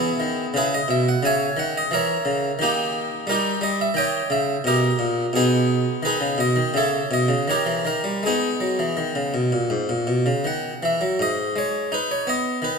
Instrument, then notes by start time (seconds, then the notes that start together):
harpsichord
Already playing: E3 B3 E4 G#4
0.20 D#3
0.54 C#3 E4 G#4 B4
0.74 D#5
0.88 B2 E5
1.09 F#5
1.23 C#3 E5 G#5
1.27 C#5
1.57 D#3 F#5
1.78 D#5
1.91 E3 A#4 C#5 E5
2.25 C#3
2.59 D#3 A#3 D#4 G4
3.27 G3 D#4 G4 A#4
3.61 G3 D#5
3.81 E5
3.94 D#3 C#5 D#5 G5
4.30 C#3 E5
4.64 B2 G4 A#4 D#5
4.99 A#2
5.33 B2 B3 D#4 G#4
6.03 D#3 D#4 G#4 B4
6.21 C#3
6.38 B2 D#5
6.56 D#3
6.74 C#3 A4 C#5 E5
7.11 B2 D#5
7.28 C#3
7.48 D#3 G4 A#4 C#5
7.66 E3
7.85 D#3 A#4
8.04 G3
8.23 G#3 D#4 G#4
8.27 B3
8.61 F#3
8.79 E3
8.97 D#3
9.15 C#3
9.34 B2
9.52 A#2
9.70 G#2
9.89 A#2
10.07 B2
10.26 C#3
10.44 D#3 F#5
10.83 E3 E5
11.01 F#3
11.19 G#2 D#5
11.56 G#3 C#5
11.92 D#4 B4
12.11 C#5
12.27 B3 D#5
12.62 D#3 B4